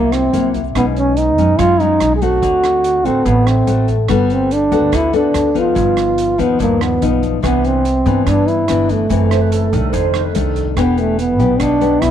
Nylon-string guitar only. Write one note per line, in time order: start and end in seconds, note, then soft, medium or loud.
0.00 0.73 C3 medium
0.00 0.30 F#3 medium
0.00 0.30 A#3 medium
0.00 0.30 E4 medium
0.33 0.60 F#3 soft
0.33 0.60 A#3 medium
0.33 0.61 E4 medium
0.75 1.57 B2 soft
0.75 1.35 G#3 medium
0.75 1.35 C#4 soft
0.75 1.35 D#4 medium
1.38 1.76 G#3 medium
1.38 1.77 C#4 medium
1.38 1.77 D#4 medium
1.59 2.40 F#3 medium
1.79 2.18 G#3 medium
1.79 2.18 C#4 medium
1.79 2.18 D#4 medium
2.22 3.02 A3 medium
2.22 3.02 C4 soft
2.22 3.02 F#4 medium
2.43 3.24 D3 medium
3.05 3.64 A3 medium
3.05 3.64 C4 medium
3.05 3.65 F#4 medium
3.26 4.07 A2 medium
3.67 3.94 A3 soft
3.67 3.94 C4 soft
3.67 3.95 F#4 soft
4.09 4.90 G3 medium
4.09 4.51 B3 soft
4.09 4.51 F#4 soft
4.09 4.51 A4 medium
4.72 5.10 B3 soft
4.72 5.10 F#4 medium
4.72 5.10 A4 medium
4.92 5.74 D3 medium
5.13 5.52 B3 soft
5.13 5.52 F#4 medium
5.13 5.52 A4 medium
5.54 6.35 F3 soft
5.54 6.35 B3 medium
5.54 6.35 D#4 medium
5.75 6.57 G2 medium
6.38 6.98 F3 medium
6.38 6.98 B3 medium
6.38 6.98 D#4 medium
6.59 7.41 G2 soft
7.02 7.40 F3 medium
7.02 7.40 B3 medium
7.02 7.40 D#4 medium
7.43 8.24 C3 medium
7.43 7.84 E3 soft
7.43 7.85 B3 soft
7.43 7.85 D4 medium
8.06 8.65 E3 medium
8.06 8.65 B3 medium
8.06 8.65 D4 medium
8.27 9.08 G2 medium
8.68 9.07 E3 soft
8.68 9.07 B3 soft
8.68 9.07 D4 medium
9.09 9.91 F#2 soft
9.09 9.69 E3 medium
9.09 9.69 A3 medium
9.09 9.69 C4 medium
9.72 10.32 D#3 soft
9.72 10.32 A3 medium
9.72 10.32 D4 medium
9.93 10.74 F2 medium
10.35 10.73 D#3 soft
10.35 10.74 A3 soft
10.35 10.74 D4 medium
10.77 11.58 E3 medium
10.77 11.18 B3 soft
10.77 11.18 D4 soft
10.77 11.19 G4 medium
11.39 11.78 B3 medium
11.39 11.78 D4 soft
11.39 11.78 G4 medium
11.60 12.11 B2 medium
11.81 12.11 B3 medium
11.81 12.11 D4 medium
11.81 12.11 G4 medium